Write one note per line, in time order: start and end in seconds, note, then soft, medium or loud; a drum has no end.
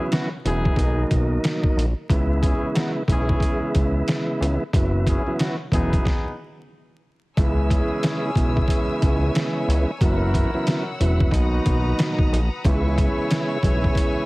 0.00 0.29 C#3 loud
0.00 0.29 E3 medium
0.00 0.29 F#3 medium
0.00 0.29 B3 medium
0.00 0.29 E4 loud
0.12 0.28 B3 medium
0.12 0.28 C#4 medium
0.12 0.28 F#4 medium
0.12 snare loud
0.12 snare medium
0.12 closed hi-hat medium
0.45 0.73 E1 medium
0.45 0.78 C#3 medium
0.45 0.78 E3 medium
0.45 0.76 F#3 medium
0.45 0.78 B3 medium
0.45 1.08 B3 medium
0.45 1.08 D#4 medium
0.45 0.78 E4 loud
0.45 1.08 G#4 loud
0.45 closed hi-hat medium
0.65 kick loud
0.76 1.05 B1 loud
0.76 1.85 B2 loud
0.76 1.85 D#3 medium
0.76 1.85 F#3 medium
0.76 1.85 A#3 medium
0.76 1.86 D#4 loud
0.76 kick medium
0.76 closed hi-hat loud
1.11 1.39 B1 medium
1.11 kick medium
1.11 closed hi-hat medium
1.44 snare loud
1.44 closed hi-hat medium
1.64 kick loud
1.77 1.94 A#1 medium
1.77 closed hi-hat medium
2.10 2.54 C#2 loud
2.10 3.03 C#3 medium
2.10 3.03 E3 medium
2.10 3.03 G#3 medium
2.10 3.03 B3 medium
2.10 3.03 E4 loud
2.10 kick loud
2.10 closed hi-hat medium
2.42 2.69 C#4 medium
2.42 2.69 E4 medium
2.42 2.69 G#4 medium
2.42 kick loud
2.42 closed hi-hat medium
2.74 2.90 B3 medium
2.74 2.90 D#4 medium
2.74 2.90 F#4 medium
2.74 snare loud
2.74 snare medium
2.74 closed hi-hat medium
3.08 3.36 B1 loud
3.08 4.63 C#3 medium
3.08 4.63 E3 medium
3.08 4.63 G#3 medium
3.08 4.64 B3 medium
3.08 3.72 C#4 medium
3.08 4.64 E4 loud
3.08 3.72 E4 medium
3.08 3.72 G#4 loud
3.08 kick medium
3.08 closed hi-hat medium
3.29 kick loud
3.40 kick medium
3.40 closed hi-hat loud
3.75 4.02 C#2 loud
3.75 kick medium
3.75 closed hi-hat medium
4.08 snare loud
4.08 snare medium
4.08 closed hi-hat medium
4.41 4.58 C#2 loud
4.41 closed hi-hat medium
4.73 5.18 F#1 loud
4.73 5.23 C#3 medium
4.73 5.23 E3 medium
4.73 5.23 F#3 medium
4.73 5.23 B3 medium
4.73 5.23 E4 loud
4.73 kick loud
4.73 closed hi-hat medium
5.07 5.33 C#4 medium
5.07 5.33 E4 medium
5.07 5.33 G#4 medium
5.07 kick loud
5.07 closed hi-hat medium
5.26 5.56 C#3 loud
5.26 5.56 E3 medium
5.26 5.57 F#3 medium
5.26 5.57 B3 medium
5.26 5.57 E4 loud
5.39 5.55 B3 medium
5.39 5.55 C#4 medium
5.39 5.55 F#4 medium
5.39 snare loud
5.39 snare medium
5.39 closed hi-hat medium
5.72 6.00 E1 medium
5.72 6.05 C#3 medium
5.72 6.06 E3 medium
5.72 6.06 F#3 medium
5.72 6.35 B3 medium
5.72 6.06 B3 medium
5.72 6.35 D#4 medium
5.72 6.06 E4 loud
5.72 6.35 G#4 loud
5.72 kick medium
5.72 closed hi-hat medium
5.93 kick loud
5.93 closed hi-hat soft
6.05 kick loud
6.05 snare medium
7.37 7.82 C#2 loud
7.37 8.30 C#3 loud
7.37 8.30 E3 medium
7.37 8.30 G#3 medium
7.37 8.31 B3 medium
7.37 9.64 C#4 medium
7.37 9.64 E4 medium
7.37 8.31 E4 loud
7.37 9.64 G#4 medium
7.37 11.29 C#5 medium
7.37 9.99 G#5 medium
7.37 9.98 E6 medium
7.37 kick loud
7.37 closed hi-hat loud
7.70 kick loud
7.70 closed hi-hat medium
8.03 snare loud
8.03 closed hi-hat medium
8.35 8.63 B1 loud
8.35 9.91 C#3 medium
8.35 9.91 E3 medium
8.35 9.91 G#3 medium
8.35 9.91 B3 medium
8.35 9.91 E4 loud
8.35 kick loud
8.35 closed hi-hat medium
8.57 kick loud
8.68 kick loud
8.68 closed hi-hat loud
9.02 9.30 C#2 loud
9.02 kick loud
9.02 closed hi-hat medium
9.35 snare loud
9.35 closed hi-hat medium
9.68 9.85 C#2 loud
9.68 closed hi-hat medium
10.01 10.46 F#1 loud
10.01 10.50 C#3 loud
10.01 10.50 E3 medium
10.01 10.50 F#3 medium
10.01 10.50 B3 medium
10.01 10.98 E4 medium
10.01 10.51 E4 loud
10.01 10.98 F#4 medium
10.01 10.98 A#4 loud
10.01 12.62 F#5 medium
10.01 11.32 E6 medium
10.01 kick loud
10.01 closed hi-hat loud
10.34 kick loud
10.34 closed hi-hat medium
10.53 10.84 C#3 loud
10.53 10.84 E3 medium
10.53 10.84 F#3 medium
10.53 10.84 B3 medium
10.53 10.84 E4 loud
10.67 snare loud
10.67 closed hi-hat medium
11.00 11.28 E1 medium
11.00 11.33 C#3 medium
11.00 11.33 E3 medium
11.00 11.31 F#3 medium
11.00 11.33 B3 medium
11.00 11.33 E4 loud
11.00 closed hi-hat medium
11.20 kick loud
11.31 11.60 B1 loud
11.31 12.40 A#2 medium
11.31 12.40 B2 loud
11.31 12.40 D#3 medium
11.31 12.40 F#3 loud
11.31 12.41 D#4 loud
11.31 12.30 D#4 medium
11.31 12.30 F#4 medium
11.31 14.26 B4 medium
11.31 12.30 B4 medium
11.31 12.63 A#5 medium
11.31 12.62 D#6 medium
11.31 kick medium
11.31 closed hi-hat loud
11.66 11.94 B1 medium
11.66 kick medium
11.66 closed hi-hat medium
11.99 snare loud
11.99 closed hi-hat medium
12.19 kick loud
12.32 12.49 A#1 medium
12.32 closed hi-hat medium
12.64 13.09 C#2 loud
12.64 13.58 C#3 loud
12.64 13.58 E3 medium
12.64 13.58 G#3 medium
12.64 13.58 B3 medium
12.64 14.26 E4 medium
12.64 13.58 E4 loud
12.64 14.26 G#4 medium
12.64 14.26 C#5 medium
12.64 14.26 G#5 medium
12.64 14.26 C#6 medium
12.64 14.26 E6 medium
12.64 kick loud
12.64 closed hi-hat loud
12.98 kick loud
12.98 closed hi-hat medium
13.31 snare loud
13.31 snare medium
13.31 closed hi-hat medium
13.63 13.91 B1 medium
13.63 14.26 C#3 medium
13.63 14.26 E3 medium
13.63 14.26 G#3 medium
13.63 14.26 B3 medium
13.63 14.26 E4 loud
13.63 kick loud
13.63 closed hi-hat medium
13.84 kick loud
13.95 kick loud
13.95 closed hi-hat loud